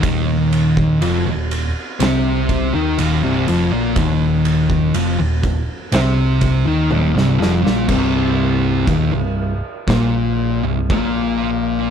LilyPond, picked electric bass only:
\new Staff \with { instrumentName = "Picked electric bass" } { \clef bass \time 4/4 \key c \minor \tempo 4 = 61 ees,,4 f,,16 ees,,8 r16 c,8. ees,16 ees,,16 c,,16 f,,16 bes,,16 | ees,,4 f,,16 ees,,8 r16 c,8. ees,16 ees,,16 c,,16 f,,16 bes,,16 | c,,4 ees,,16 c,,8 r16 bes,,8. c,,16 bes,,4 | }